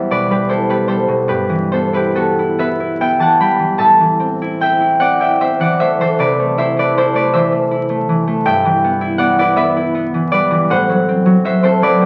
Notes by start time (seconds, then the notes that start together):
Already playing: E2 G3 B3 E4 G4 B4 C5 E5 F#5 G5
0.11 B2 B4 D5
0.30 G3 G4 B4
0.49 E4 A4 C5
0.69 B3 G4 B4
0.87 G3 A4 C5
1.08 B2
1.28 G2 G4 B4
1.49 E3
1.72 B3 A4 C5
1.93 E4 G4 B4
2.15 B3 F#4 A4
2.39 E4
2.58 B3 B4 E5
2.80 E4
3.01 B3 E5 G5
3.19 E3 F#5 A5
3.40 G3 G5 B5
3.60 E3
3.78 A2 E5 A5
4.00 E3
4.20 C4
4.42 E4
4.61 C4 E5 G5
4.80 E4
5.00 C4 D5 F#5
5.20 E4 E5 G5
5.41 C4 C5 E5
5.60 E3 D5 F#5
5.80 A3 C5 E5
6.00 E3 A4 C5
6.19 C3 B4 D5
6.40 A3
6.57 E4 C5 E5
6.77 A3 B4 D5
6.97 E4 A4 C5
7.14 A3 B4 D5
7.33 E3 C5 E5
7.52 A3
7.71 E4
7.90 A3
8.09 E3
8.27 A3
8.45 G2 E5 G5
8.65 E3
8.84 B3
9.01 E4
9.18 B3 D5 F#5
9.38 E4 B4 D5
9.56 B3 B4 E5
9.76 E4
9.95 B3
10.14 E3
10.32 G3 B4 D5
10.51 E3
10.70 A2 C5 F#5
10.89 F#3
11.08 C4
11.26 F#3
11.45 F#4 C5 E5
11.63 C4 A4 C5
11.82 F#3 B4 D5
12.01 C4